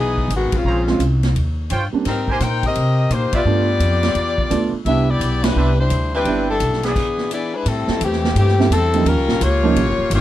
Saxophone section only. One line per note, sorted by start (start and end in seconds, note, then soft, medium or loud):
0.00 0.30 E3 medium
0.00 0.30 B3 medium
0.00 0.30 D#4 medium
0.00 0.30 G#4 medium
0.35 0.55 D#3 medium
0.35 0.55 G#3 medium
0.35 0.55 B3 medium
0.35 0.56 F#4 medium
0.56 1.03 G#3 medium
0.56 1.03 C4 medium
0.56 1.03 C#4 medium
0.56 1.03 F4 medium
2.07 2.28 G3 medium
2.07 2.28 C4 medium
2.07 2.28 D#4 medium
2.07 2.28 A#4 medium
2.31 2.42 A#3 medium
2.31 2.41 D#4 medium
2.31 2.41 G4 medium
2.31 2.41 C5 medium
2.42 2.64 D#4 medium
2.42 2.64 A#4 medium
2.42 2.64 C5 medium
2.42 2.64 G5 medium
2.66 3.09 C4 medium
2.66 3.09 G4 medium
2.66 3.09 A#4 medium
2.66 3.09 D#5 medium
3.12 3.34 A#3 medium
3.12 3.34 D#4 medium
3.12 3.33 G4 medium
3.12 3.34 C5 medium
3.34 4.74 B3 medium
3.34 4.74 F4 medium
3.34 4.74 G4 medium
3.34 4.74 D5 medium
4.86 5.07 D4 medium
4.86 5.07 G4 medium
4.86 5.07 B4 medium
4.86 5.07 E5 medium
5.09 5.44 B3 medium
5.09 5.42 E4 medium
5.09 5.44 G4 medium
5.09 5.44 D5 medium
5.43 5.78 G3 medium
5.43 5.78 D4 medium
5.43 5.78 E4 medium
5.43 5.79 B4 medium
5.79 6.12 G3 medium
5.79 6.12 D4 medium
5.79 6.12 E4 medium
5.79 6.12 C5 medium
6.14 6.47 G3 medium
6.14 6.47 D4 medium
6.14 6.47 E4 medium
6.14 6.47 B4 medium
6.49 6.82 G3 medium
6.49 6.82 D4 medium
6.49 6.81 E4 medium
6.49 6.82 A4 medium
6.85 7.54 E3 medium
6.85 7.32 B3 medium
6.85 7.54 D4 medium
6.85 7.32 G#4 medium
7.33 7.53 B3 medium
7.33 7.53 E4 medium
7.33 7.53 G#4 medium
7.33 7.53 D5 medium
7.55 7.67 G#3 medium
7.55 7.67 D4 medium
7.55 7.67 E4 medium
7.55 7.67 B4 medium
7.68 8.02 G3 medium
7.68 8.02 C4 medium
7.68 8.02 E4 medium
7.68 8.02 A4 medium
8.03 8.35 E3 medium
8.03 8.35 A3 medium
8.03 8.35 C4 medium
8.03 8.35 G4 medium
8.38 8.70 E3 medium
8.38 8.70 A3 medium
8.38 8.70 C4 medium
8.38 8.70 G4 medium
8.72 9.04 G3 medium
8.72 9.04 C4 medium
8.72 9.05 E4 medium
8.72 9.04 A4 medium
9.07 9.42 G3 medium
9.07 9.42 C#4 medium
9.07 9.42 F4 medium
9.07 9.42 A#4 medium
9.42 10.12 A#3 medium
9.42 10.12 F4 medium
9.42 10.12 G4 medium
9.42 10.12 C#5 loud
10.14 10.21 A#3 medium
10.14 10.21 F4 medium
10.14 10.21 G4 medium
10.14 10.21 C#5 medium